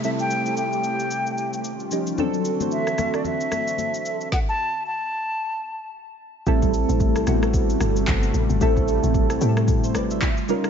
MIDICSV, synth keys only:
0, 0, Header, 1, 2, 480
1, 0, Start_track
1, 0, Tempo, 535714
1, 33, Time_signature, 4, 2, 24, 8
1, 9586, End_track
2, 0, Start_track
2, 0, Title_t, "Synth keys"
2, 0, Program_c, 0, 88
2, 0, Control_c, 0, 64, 127
2, 0, Note_on_c, 0, 55, 71
2, 0, Note_on_c, 0, 60, 63
2, 0, Note_on_c, 0, 64, 64
2, 0, Note_on_c, 0, 69, 77
2, 33, Note_off_c, 0, 55, 0
2, 33, Note_on_c, 0, 55, 92
2, 38, Note_off_c, 0, 60, 0
2, 38, Note_on_c, 0, 60, 82
2, 42, Note_off_c, 0, 64, 0
2, 42, Note_on_c, 0, 64, 84
2, 46, Note_off_c, 0, 69, 0
2, 46, Note_on_c, 0, 69, 99
2, 329, Note_off_c, 0, 55, 0
2, 331, Note_off_c, 0, 60, 0
2, 333, Note_off_c, 0, 64, 0
2, 335, Note_off_c, 0, 69, 0
2, 413, Note_on_c, 0, 55, 69
2, 417, Note_on_c, 0, 60, 63
2, 421, Note_on_c, 0, 64, 65
2, 425, Note_on_c, 0, 69, 77
2, 1173, Note_off_c, 0, 55, 0
2, 1175, Note_off_c, 0, 60, 0
2, 1177, Note_off_c, 0, 64, 0
2, 1179, Note_off_c, 0, 69, 0
2, 1486, Control_c, 0, 64, 0
2, 1636, Control_c, 0, 64, 127
2, 1714, Note_on_c, 0, 53, 78
2, 1718, Note_on_c, 0, 61, 71
2, 1722, Note_on_c, 0, 63, 74
2, 1727, Note_on_c, 0, 67, 87
2, 1913, Note_off_c, 0, 53, 0
2, 1915, Note_off_c, 0, 61, 0
2, 1917, Note_off_c, 0, 63, 0
2, 1920, Note_off_c, 0, 67, 0
2, 1955, Note_on_c, 0, 54, 111
2, 1960, Note_on_c, 0, 60, 97
2, 1963, Control_c, 0, 64, 0
2, 1964, Note_on_c, 0, 62, 99
2, 1968, Note_on_c, 0, 69, 125
2, 2147, Control_c, 0, 64, 127
2, 2250, Note_off_c, 0, 54, 0
2, 2252, Note_off_c, 0, 60, 0
2, 2254, Note_off_c, 0, 62, 0
2, 2256, Note_off_c, 0, 69, 0
2, 2335, Note_on_c, 0, 52, 60
2, 2338, Note_on_c, 0, 60, 67
2, 2343, Note_on_c, 0, 62, 66
2, 2347, Note_on_c, 0, 72, 79
2, 2382, Note_off_c, 0, 52, 0
2, 2392, Note_on_c, 0, 54, 73
2, 3096, Note_off_c, 0, 60, 0
2, 3098, Note_off_c, 0, 62, 0
2, 3100, Note_off_c, 0, 72, 0
2, 3123, Note_off_c, 0, 54, 0
2, 3884, Control_c, 0, 64, 0
2, 5795, Note_on_c, 0, 55, 123
2, 5797, Note_on_c, 0, 57, 109
2, 5801, Note_on_c, 0, 60, 110
2, 5804, Note_on_c, 0, 64, 108
2, 5807, Note_on_c, 0, 69, 127
2, 5964, Control_c, 0, 64, 127
2, 6385, Note_off_c, 0, 55, 0
2, 6387, Note_off_c, 0, 57, 0
2, 6389, Note_off_c, 0, 60, 0
2, 6390, Note_off_c, 0, 64, 0
2, 6392, Note_off_c, 0, 69, 0
2, 6515, Note_on_c, 0, 55, 92
2, 6518, Note_on_c, 0, 57, 79
2, 6521, Note_on_c, 0, 59, 69
2, 6523, Note_on_c, 0, 64, 83
2, 6527, Note_on_c, 0, 66, 98
2, 6578, Note_on_c, 0, 60, 85
2, 6584, Note_off_c, 0, 59, 0
2, 7290, Note_off_c, 0, 55, 0
2, 7291, Note_off_c, 0, 57, 0
2, 7294, Note_off_c, 0, 64, 0
2, 7296, Note_off_c, 0, 66, 0
2, 7321, Note_off_c, 0, 60, 0
2, 7715, Note_on_c, 0, 55, 119
2, 7717, Note_on_c, 0, 57, 109
2, 7721, Note_on_c, 0, 60, 110
2, 7724, Note_on_c, 0, 64, 111
2, 7727, Note_on_c, 0, 69, 127
2, 8306, Note_off_c, 0, 55, 0
2, 8307, Note_off_c, 0, 57, 0
2, 8308, Note_off_c, 0, 60, 0
2, 8310, Note_off_c, 0, 64, 0
2, 8312, Note_off_c, 0, 69, 0
2, 8434, Note_on_c, 0, 55, 94
2, 8438, Note_on_c, 0, 57, 84
2, 8440, Note_on_c, 0, 60, 85
2, 8444, Note_on_c, 0, 64, 84
2, 8447, Note_on_c, 0, 67, 77
2, 8504, Note_on_c, 0, 69, 97
2, 8507, Note_off_c, 0, 67, 0
2, 8709, Note_off_c, 0, 69, 0
2, 8820, Note_on_c, 0, 72, 70
2, 8825, Note_on_c, 0, 69, 62
2, 8912, Note_off_c, 0, 72, 0
2, 8915, Note_off_c, 0, 69, 0
2, 8921, Note_on_c, 0, 74, 72
2, 8926, Note_on_c, 0, 71, 62
2, 9049, Note_off_c, 0, 74, 0
2, 9052, Note_off_c, 0, 71, 0
2, 9060, Note_on_c, 0, 76, 68
2, 9066, Note_on_c, 0, 72, 57
2, 9154, Note_off_c, 0, 55, 0
2, 9156, Note_off_c, 0, 57, 0
2, 9157, Note_off_c, 0, 60, 0
2, 9159, Note_off_c, 0, 64, 0
2, 9165, Control_c, 0, 64, 0
2, 9285, Note_off_c, 0, 76, 0
2, 9288, Note_off_c, 0, 72, 0
2, 9330, Control_c, 0, 64, 127
2, 9395, Note_on_c, 0, 55, 95
2, 9399, Note_on_c, 0, 61, 87
2, 9401, Note_on_c, 0, 63, 86
2, 9404, Note_on_c, 0, 65, 87
2, 9408, Note_on_c, 0, 70, 106
2, 9586, Note_off_c, 0, 55, 0
2, 9586, Note_off_c, 0, 61, 0
2, 9586, Note_off_c, 0, 63, 0
2, 9586, Note_off_c, 0, 65, 0
2, 9586, Note_off_c, 0, 70, 0
2, 9586, End_track
0, 0, End_of_file